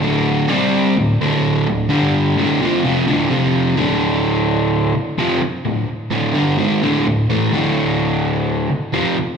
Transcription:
X:1
M:4/4
L:1/8
Q:1/4=128
K:Dm
V:1 name="Overdriven electric guitar" clef=bass
[D,,A,,D,]2 [C,G,C]2 [D,,A,,] [D,,A,,D,]2 [D,,A,,] | [G,,D,G,]2 [D,,A,,D,] [F,,C,F,] [F,,C,F,] [D,,A,,D,] [F,,C,F,]2 | [D,,A,,D,]4- [D,,A,,D,] z [F,,C,F,] z | [D,,A,,] z [D,,A,,D,] [G,,D,G,] [^G,,_E,^G,] [D,,A,,D,] [D,,A,,] [A,,=E,A,] |
[D,,A,,D,]4- [D,,A,,D,] z [F,,C,F,] z |]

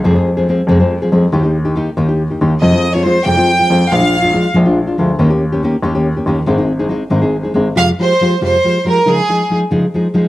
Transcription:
X:1
M:6/8
L:1/16
Q:3/8=93
K:Ab
V:1 name="Violin section"
z12 | z12 | e3 d c2 g6 | f6 z6 |
z12 | z12 | [K:Fm] f2 c4 c4 B2 | A4 z8 |]
V:2 name="Nylon-string guitar"
[F,,C,F,A,CA] [F,A,CA] z [F,A,CA] [F,A,CA] z [F,,C,F,A,CA] [F,A,CA] z [F,A,CA] [F,A,CA] z | [E,B,EG] [B,EG] z [B,EG] [E,B,EG] z [E,B,EG] [B,EG] z [B,EG] [E,B,EG] z | [F,,C,F,A,CF] [F,A,CF] z [F,A,CF] [F,A,CF] z [F,,C,F,A,CF] [F,A,CF] z [F,A,CF] [F,A,CF] z | [B,,F,A,=DF] [A,DF] z [A,DF] [F,A,DF] z [B,,F,A,DF] [A,DF] z [A,DF] [F,A,DF] z |
[E,B,DG] [B,DG] z [B,DG] [E,B,DG] z [E,B,DG] [B,DG] z [B,DG] [E,B,DG] z | [A,,E,A,CEA] [A,CEA] z [A,CEA] [A,CEA] z [A,,E,A,CEA] [A,CEA] z [A,CEA] [A,CEA] z | [K:Fm] [F,,C,F,A,FG] z [F,A,FG] z [F,A,FG] z [F,,C,F,A,FG] z [F,A,FG] z [F,A,FG] z | [D,F,A,EA] z [F,A,EA] z [F,A,EA] z [D,F,A,EA] z [F,A,EA] z [F,A,EA] z |]
V:3 name="Grand piano" clef=bass
F,,6 F,,4 F,,2 | E,,6 E,,4 E,,2 | F,,6 F,,4 F,,2 | B,,,6 B,,,4 =D,,2 |
E,,6 E,,4 E,,2 | A,,,6 A,,,4 A,,,2 | [K:Fm] z12 | z12 |]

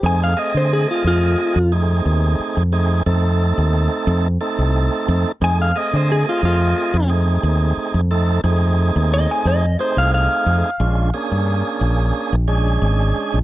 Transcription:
X:1
M:4/4
L:1/16
Q:1/4=89
K:Fmix
V:1 name="Clean electric guitar"
^g f e c ^G F F4 z6 | z16 | ^g f e c ^G F F4 z6 | z6 e ^g e2 c f f4- |
f8 z8 |]
V:2 name="Tonewheel organ"
[A,CE^G]2 [A,CGe]8 [A,CEG]6 | [A,CE^G]2 [A,CEA]8 [A,CEA]6 | [A,CE^G]2 [A,CGe]8 [A,CEG]6 | [A,CEA]2 [A,CE^G]8 [A,CEG]6 |
[_A,^CDF]2 [B,CD_A]8 [A,CDA]6 |]
V:3 name="Fingered electric bass" clef=bass
F,,2 z D,2 z F,,2 z F,,3 E,,2 z F,,- | F,,2 F,,3 E,,2 z F,,2 z C,,2 z F,, z | F,,2 z D,2 z F,,2 z F,,3 E,,2 z F,,- | F,,2 F,,3 E,,2 z F,,2 z C,,2 z F,, z |
B,,,2 z G,,2 z B,,,2 z B,,,3 _A,,,2 z B,,, |]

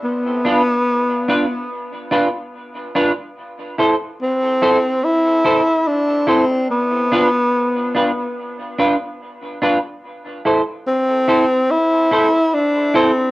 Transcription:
X:1
M:4/4
L:1/8
Q:1/4=72
K:Am
V:1 name="Clean electric guitar"
z [DFB] z [DFB] z [DFB] z [DFB] | z [EAc] z [EAc] z [EAc] z [EAc] | z [DFB] z [DFB] z [DFB] z [DFB] | z [EAc] z [EAc] z [EAc] z [EAc] |]
V:2 name="Tenor saxophone"
B,4 z4 | z2 C2 E2 D C | B,4 z4 | z2 C2 E2 D C |]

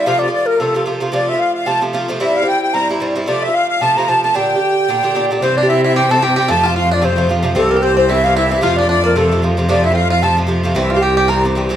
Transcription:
X:1
M:4/4
L:1/16
Q:"Swing" 1/4=224
K:F
V:1 name="Accordion"
f2 d2 d2 B2 A4 z4 | d2 e2 f2 f2 a2 z6 | e2 f2 g2 g2 b2 z6 | d2 e2 f2 f2 a2 b2 a2 a2 |
g12- g2 z3/2 d/2 | c2 d2 e2 e2 g2 a2 g2 g2 | a4 f2 d2 c4 z4 | A4 c2 c2 e2 f2 e4 |
f2 d2 d4 A4 z4 | d2 e3/2 g/2 f2 f2 a2 z6 | e2 f2 g2 g2 b2 z6 |]
V:2 name="Flute"
f2 d2 d2 B2 A4 z4 | d2 e2 f2 f2 a2 z6 | e2 f2 g2 g2 b2 z6 | d2 e2 f2 f2 a2 b2 a2 a2 |
g12- g2 z2 | c2 d2 e2 e2 g2 a2 g2 g2 | a2 f2 f2 d2 c4 z4 | A2 B2 c2 c2 e2 f2 e2 e2 |
f2 d2 d2 B2 A4 z4 | d2 e2 f2 f2 a2 z6 | e3/2 e/2 f2 g2 g2 b2 z6 |]
V:3 name="Five-string banjo"
z16 | z16 | z16 | z16 |
z16 | C2 D2 E2 E2 G2 A2 G2 G2 | A2 F2 F2 D2 C4 z4 | A,2 B,2 C2 C2 E4 E2 E2 |
F2 D2 D2 B,2 A,4 z4 | D2 E2 F2 F2 A2 z6 | E2 F2 G2 G2 B2 z6 |]
V:4 name="Bouzouki"
[C,F,A,F]3 [F,A,F]4- [F,A,F] [C,F,A,F]2 [C,F,A,F]2 [C,F,A,F]2 [C,F,A,F]2 | [C,F,A,F]3 [F,A,F]4- [F,A,F] [C,F,A,F]2 [C,F,A,F]2 [C,F,A,F]2 [C,F,A,F]2 | [G,,G,CE]3 [G,CE]4- [G,CE] [G,,G,CE]2 [G,,G,CE]2 [G,,G,CE]2 [G,,G,CE]2 | [C,F,A,F]3 [F,A,F]4- [F,A,F] [C,F,A,F]2 [C,F,A,F]2 [C,F,A,F]2 [C,F,A,F]2 |
[B,,D,DG]3 [D,DG]4- [D,DG] [B,,D,DG]2 [B,,D,DG]2 [B,,D,DG]2 [B,,D,DG]2 | [G,,E,CG]3 [E,CG]4- [E,CG] [G,,E,CG]2 [G,,E,CG]2 [G,,E,CG]2 [G,,E,CG]2 | [C,F,A,F]3 [F,A,F]4- [F,A,F] [C,F,A,F]2 [C,F,A,F]2 [C,F,A,F]2 [C,F,A,F]2 | [G,,E,CG]3 [E,CG]4- [E,CG] [G,,E,CG]2 [G,,E,CG]2 [G,,E,CG]2 [G,,E,CG]2 |
[C,F,A,F]3 [F,A,F]4- [F,A,F] [C,F,A,F]2 [C,F,A,F]2 [C,F,A,F]2 [C,F,A,F]2 | [C,F,A,F]3 [F,A,F]4- [F,A,F] [C,F,A,F]2 [C,F,A,F]2 [C,F,A,F]2 [C,F,A,F]2 | [G,,E,CG]3 [E,CG]4- [E,CG] [G,,E,CG]2 [G,,E,CG]2 [G,,E,CG]2 [G,,E,CG]2 |]
V:5 name="Cello" clef=bass
z16 | z16 | z16 | z16 |
z16 | C,16 | F,,16 | C,,16 |
F,,16- | F,,16 | C,,16 |]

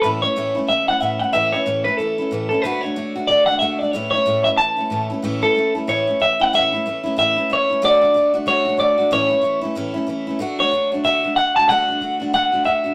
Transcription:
X:1
M:4/4
L:1/8
Q:"Swing" 1/4=186
K:A
V:1 name="Clean electric guitar"
B c2 z e f e f | e c2 B A3 A | B c2 z d f e d | c c2 e a3 z |
z A2 z c2 e f | e4 e2 c2 | d3 z c2 d2 | c3 z4 z |
z c2 z e2 f a | f4 f2 e2 |]
V:2 name="Steel-string acoustic guitar"
[A,,E,A,CE] [A,CE] [A,,E,A,CE] [A,CE] [E,A,CE] [A,CE] [A,,E,A,CE] [A,CE] | [A,,E,A,CE] [A,CE] [A,,E,A,CE] [A,CE] [E,A,CE] [A,CE] [A,,E,A,CE] [A,CE] | [D,A,DF] [A,DF] [D,A,DF] [A,DF] [D,A,DF] [A,DF] [D,A,DF] [A,DF] | [A,,E,A,CE] [A,CE] [A,,E,A,CE] [A,CE] [E,A,CE] [A,CE] [A,,E,A,CE] [A,CE] |
[A,,E,A,CE] [A,CE] [E,A,CE] [A,CE] [A,,E,A,CE] [A,CE] [E,A,CE] [A,CE] | [A,,E,A,CE] [A,CE] [E,A,CE] [A,CE] [A,,E,A,CE] [A,CE] [E,A,CE] [A,CE] | [D,A,DF] [A,DF] [D,A,DF] [A,DF] [D,A,DF] [A,DF] [D,A,DF] [A,DF] | [A,,E,A,CE] [A,CE] [E,A,CE] [A,CE] [A,,E,A,CE] [A,CE] [E,A,CE] [A,CE] |
[D,A,DF] [A,DF] [D,A,DF] [A,DF] [D,A,DF] [A,DF] [D,A,DF] [A,DF] | [D,A,DF] [A,DF] [D,A,DF] [A,DF] [D,A,DF] [A,DF] [D,A,DF] [A,DF] |]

